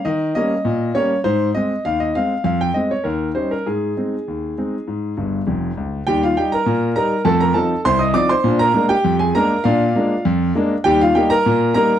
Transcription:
X:1
M:2/4
L:1/16
Q:1/4=100
K:Ab
V:1 name="Grand piano"
e2 e4 d2 | c2 e2 f e f2 | f g e d B2 c B | A8- |
A6 z2 | [K:Eb] [Gg] [Ff] [Gg] [Bb]3 [Bb]2 | [=A=a] [Bb] [Aa]2 [cc'] [ee'] [dd'] [cc']- | [cc'] [Bb]2 [Gg]2 [Aa] [Bb]2 |
[Fdf]6 z2 | [Gg] [Ff] [Gg] [Bb]3 [Bb]2 |]
V:2 name="Grand piano" clef=bass
E,2 [G,B,D]2 B,,2 [G,B,D]2 | A,,2 [A,C]2 E,,2 [A,C]2 | F,,2 [A,C]2 E,,2 [G,DE]2 | A,,2 [A,CE]2 E,,2 [A,CE]2 |
A,,2 [G,,,G,,]2 [F,,,F,,]2 D,,2 | [K:Eb] [E,,G,]2 [G,E]2 B,,2 [G,E]2 | [F,,=A,]2 [F,CE]2 C,,2 [F,CE]2 | [B,,D]2 [A,B,D]2 F,,2 [A,B,D]2 |
[B,,D]2 [A,B,D]2 F,,2 [A,B,D]2 | [E,,G,]2 [G,B,E]2 B,,2 [G,B,E]2 |]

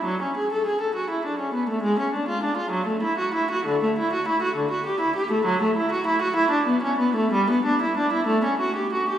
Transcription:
X:1
M:6/8
L:1/16
Q:3/8=66
K:F#m
V:1 name="Viola"
F, C G A G A F E D C B, A, | G, C D ^E D E F, A, =E F E F | [K:D] D, A, E F E F D, F G E G A, | F, A, E F E F E D B, C B, A, |
G, B, D E D E A, C F G F G |]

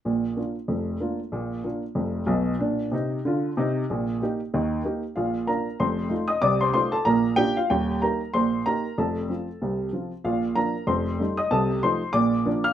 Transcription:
X:1
M:4/4
L:1/8
Q:"Swing" 1/4=189
K:Bb
V:1 name="Upright piano"
z8 | z8 | z8 | z8 |
[Ff]2 [Bb]2 [cc']3 [ee'] | [dd'] [cc'] [cc'] [Aa] [Bb]2 [Gg] [Ff] | [Gg]2 [Bb]2 [cc']2 [Bb]2 | [Aa]6- [Aa] z |
[Ff]2 [Bb]2 [cc']3 [ee'] | [Aa]2 [cc']2 [dd']3 [ff'] |]
V:2 name="Upright piano"
[B,,,B,,]2 [B,DF]2 [F,,,F,,]2 [B,DF]2 | [B,,,B,,]2 [B,DF]2 [F,,,F,,]2 [_C,,_C,]2 | [B,,D]2 [C,E]2 [D,F]2 [C,E]2 | [B,,,B,,]2 [B,EG]2 [E,,E,]2 [B,EG]2 |
[B,,,B,,]2 [B,DF]2 [F,,,F,,]2 [A,EF]2 | [C,,C,]2 [A,EF]2 [B,,,B,,]2 [B,DF]2 | [E,,,E,,]2 [B,EG]2 [B,,,B,,]2 [B,EG]2 | [F,,,F,,]2 [F,CF]2 [C,,C,]2 [F,CF]2 |
[B,,,B,,]2 [F,B,D]2 [F,,,F,,]2 [G,A,E]2 | [C,,C,]2 [F,A,E]2 [B,,,B,,]2 [F,B,D]2 |]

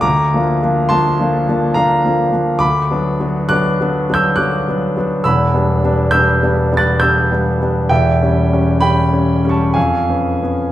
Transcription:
X:1
M:3/4
L:1/16
Q:1/4=68
K:Bb
V:1 name="Grand piano"
[bd']4 [ac']4 [fb]4 | [K:Bm] [bd']4 [d'f']3 [e'g'] [d'f']4 | [be']4 [e'g']3 [f'a'] [e'g']4 | [eg]4 [gb]3 [ac'] [^e^g]4 |]
V:2 name="Grand piano"
(3D,,2 [F,B,D]2 [F,B,D]2 (3[F,B,D]2 [F,B,D]2 [F,B,D]2 (3[F,B,D]2 [F,B,D]2 [F,B,D]2 | [K:Bm] (3D,,2 [F,B,D]2 [F,B,D]2 (3[F,B,D]2 [F,B,D]2 [F,B,D]2 (3[F,B,D]2 [F,B,D]2 [F,B,D]2 | (3[E,,,E,,]2 [G,B,D]2 [G,B,D]2 (3[G,B,D]2 [G,B,D]2 [G,B,D]2 (3[G,B,D]2 [G,B,D]2 [G,B,D]2 | (3[E,,,E,,]2 [G,C]2 [G,C]2 (3[G,C]2 [G,C]2 [G,C]2 (3^E,,2 [B,C]2 [B,C]2 |]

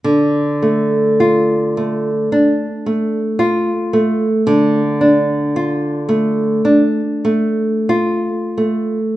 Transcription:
X:1
M:4/4
L:1/8
Q:1/4=54
K:Dm
V:1 name="Nylon-string guitar"
D, A, F A, D A, F A, | D, D F A, D A, F A, |]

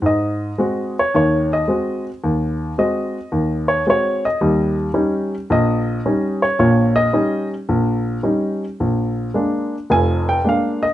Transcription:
X:1
M:4/4
L:1/8
Q:"Swing" 1/4=110
K:Ebmix
V:1 name="Grand piano"
e3 d d e2 z | z2 e3 d d e- | e z3 e3 d | d e2 z4 z |
z4 a g f e |]
V:2 name="Grand piano" clef=bass
A,,2 [A,C_G] z [E,,E,]2 [A,CG] z | E,,2 [A,C_G] z E,,2 [A,CG] z | [E,,G,]2 [G,DE] z B,,,2 [G,DE] z | [B,,,B,,]2 [G,DE] z B,,,2 [G,DE] z |
B,,,2 [A,B,=D] z [F,,,F,,]2 [A,B,D] z |]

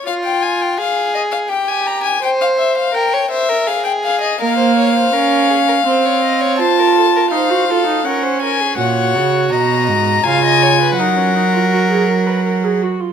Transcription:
X:1
M:3/4
L:1/16
Q:1/4=82
K:Bbm
V:1 name="Violin"
f =g a g f2 e f g a b a | =g f =e f g2 e2 f g f _e | f12 | =a4 f4 g2 _a2 |
[K:F#] f4 a4 g4 | f8- f2 z2 |]
V:2 name="Violin"
F4 A4 =G4 | c4 B d c B A4 | B c d c B2 A B c d e d | c B =A B c2 A2 B c B _A |
[K:F#] c4 d4 e d c B | A8- A2 z2 |]
V:3 name="Viola"
z12 | z12 | B,4 D4 C4 | F4 E G F E D4 |
[K:F#] F8 E4 | D C D E F G A B A G F E |]
V:4 name="Cello" clef=bass
z12 | z12 | z12 | z12 |
[K:F#] A,,2 C,2 B,,2 G,,2 C,4 | F,8- F,2 z2 |]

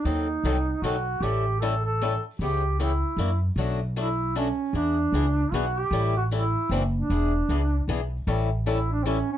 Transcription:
X:1
M:3/4
L:1/16
Q:"Swing" 1/4=153
K:Amix
V:1 name="Duduk"
^D8 F4 | G4 A2 A4 z2 | G4 E6 z2 | z4 E4 C4 |
D8 F2 G2- | G2 F2 E4 =C2 D2- | D8 z4 | z4 E2 D3/2 =C/2 ^C2 C2 |]
V:2 name="Steel-string acoustic guitar"
[^D,F,^B,^DA]2 z2 [D,F,B,DA]2 z2 [D,F,B,DA]2 z2 | [E,G,CEA]2 z2 [E,G,CEA]2 z2 [E,G,CEA]2 z2 | [C,E,B,CG]2 z2 [C,E,B,CG]2 z2 [E,^A,DF]2 z2 | [B,,F,A,DF]2 z2 [B,,F,A,DF]2 z2 [B,,F,A,DF]2 z2 |
[E,B,D^G]2 z2 [E,B,DG]2 z2 [E,B,DG]2 z2 | [E,G,CEA]2 z2 [E,G,CEA]2 z2 [E,^A,DF]2 z2 | [E,B,D^G]2 z2 [E,B,DG]2 z2 [E,B,DG]2 z2 | [E,G,CEA]2 z2 [E,G,CEA]2 z2 [E,G,CEA]2 z2 |]
V:3 name="Upright bass" clef=bass
^D,,4 ^B,,,4 =B,,,4 | A,,,12 | C,,8 F,,4 | B,,,12 |
E,,4 C,,4 B,,,4 | A,,,8 F,,,4 | E,,,4 C,,4 B,,,4 | A,,,12 |]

